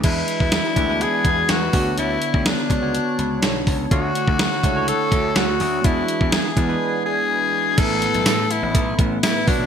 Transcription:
0.03 slap bass E2, tine electric piano E3 G#3 D4 E4 B4, analog synth pad E3 B3 D4 F#4 G#4, tenor saxophone E4, kick, closed hi-hat, crash
0.28 closed hi-hat
0.40 slap bass E2, kick
0.52 snare, closed hi-hat
0.76 slap bass D2, tine electric piano G#3 D4 E4 B4, kick, closed hi-hat
0.88 tine electric piano G#3 D4 E4 B4
1.01 tenor saxophone G#4, closed hi-hat
1.25 slap bass E2, kick, closed hi-hat
1.49 slap bass E2, tenor saxophone F#4, snare, closed hi-hat
1.73 slap bass D2, tine electric piano D3 B3 D4 F#4 C#5, analog synth pad D4 C#5, kick, open hi-hat
1.98 slap bass D2, tenor saxophone E4, closed hi-hat
2.22 closed hi-hat
2.34 slap bass D2, kick
2.46 tenor saxophone D4, snare, closed hi-hat
2.69 slap bass C#2, tine electric piano B3 D4 F#4 C#5, kick, closed hi-hat
2.81 tine electric piano B3 D4 F#4 C#5
2.95 closed hi-hat
3.19 slap bass C#2, closed hi-hat
3.42 slap bass B1, snare, closed hi-hat
3.67 slap bass C#2, kick, open hi-hat
3.91 slap bass D2, tine electric piano D3 A3 D4 F#4 C#5, analog synth pad A3 E4 F#4, tenor saxophone F#4, kick, closed hi-hat
4.15 closed hi-hat
4.28 slap bass D2, kick
4.39 snare, closed hi-hat
4.63 slap bass C#2, tine electric piano A3 D4 F#4 C#5, kick, closed hi-hat
4.76 tine electric piano A3 D4 F#4 C#5
4.88 tenor saxophone A4, closed hi-hat
5.12 slap bass D2, kick, closed hi-hat
5.36 slap bass D2, tenor saxophone F#4, snare, closed hi-hat
5.60 slap bass D2, open hi-hat
5.84 slap bass E2, tine electric piano E3 G#3 D4 E4 B4, analog synth pad E3 B3 D4 G#4, tenor saxophone E4, kick, closed hi-hat
6.08 closed hi-hat
6.21 slap bass E2, kick
6.32 tenor saxophone G#4, snare, closed hi-hat
6.56 slap bass E2, tine electric piano G#3 D4 E4 B4, kick, closed hi-hat
6.68 tine electric piano G#3 D4 E4 B4
7.06 tenor saxophone G#4
7.78 slap bass A1, tine electric piano A2 A3 B3 E4 A4, analog synth pad E3 A3 B3, tenor saxophone A4, kick, closed hi-hat, crash
7.84 tine electric piano B4
8.02 closed hi-hat
8.14 slap bass B1, closed hi-hat
8.26 slap bass A2, snare, closed hi-hat, tambourine
8.51 tenor saxophone E4, closed hi-hat
8.62 slap bass A1
8.75 slap bass B1, kick, closed hi-hat
8.98 slap bass A1, tine electric piano A3 B3 E4 B4, kick, closed hi-hat
9.23 slap bass A2, tenor saxophone E4, snare, closed hi-hat, tambourine
9.47 slap bass B1, tine electric piano B2 B3 D4 F#4 C#5, analog synth pad D3 C#5, tenor saxophone D4, kick, open hi-hat
9.59 slap bass A1

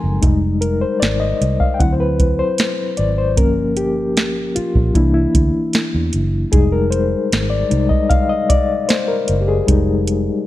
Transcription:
Already playing: reed electric piano F3 G#3 C4 D#4 A4 A#4 F5 G5 G#5 A#5 C6
0.04 fingered electric bass F#1
0.22 fingered electric bass F1, reed electric piano G3 G#3 D#4, kick, closed hi-hat
0.61 reed electric piano A#4, closed hi-hat
0.81 reed electric piano C5
1.00 fingered electric bass G#1, reed electric piano D5, snare, closed hi-hat
1.20 reed electric piano D#5
1.41 fingered electric bass C2, closed hi-hat
1.60 reed electric piano F5, kick
1.74 reed electric piano G5
1.79 fingered electric bass D2, reed electric piano F#3 C4 E4 F#5, kick, closed hi-hat
1.93 reed electric piano C5
2.00 reed electric piano B4
2.19 kick, closed hi-hat
2.39 reed electric piano C5
2.58 snare, closed hi-hat
2.97 fingered electric bass G#1, reed electric piano D5, closed hi-hat
3.18 reed electric piano C5
3.36 fingered electric bass G1, reed electric piano F3 A#3 C#4 A#4, kick, closed hi-hat
3.77 reed electric piano G4, closed hi-hat
4.17 snare, closed hi-hat
4.56 reed electric piano F4, muted fingered electric bass stroke, closed hi-hat
4.75 fingered electric bass A#1, kick
4.94 fingered electric bass C2, reed electric piano E3 A#3 D4 E4, kick, closed hi-hat
5.14 reed electric piano E4
5.35 fingered electric bass D2, kick, closed hi-hat
5.73 snare, closed hi-hat
5.95 fingered electric bass E2
6.13 fingered electric bass F#1, closed hi-hat
6.51 fingered electric bass F1, reed electric piano G3 G#3 D#4 G#4, kick, closed hi-hat
6.72 reed electric piano A#4
6.91 reed electric piano C5, closed hi-hat
7.32 fingered electric bass G#1, snare, closed hi-hat
7.50 reed electric piano D5
7.70 fingered electric bass C2, reed electric piano G3 G#3 D#4, closed hi-hat
7.89 reed electric piano D#5, kick
8.10 reed electric piano F5, kick, closed hi-hat
8.29 reed electric piano D#5
8.49 reed electric piano D5, kick, closed hi-hat
8.89 reed electric piano C5, snare, closed hi-hat
9.08 reed electric piano A#4
9.28 fingered electric bass F#1, closed hi-hat
9.41 reed electric piano G4
9.48 reed electric piano G#4
9.67 fingered electric bass F1, reed electric piano G3 G#3 D#4, kick, closed hi-hat
10.07 closed hi-hat

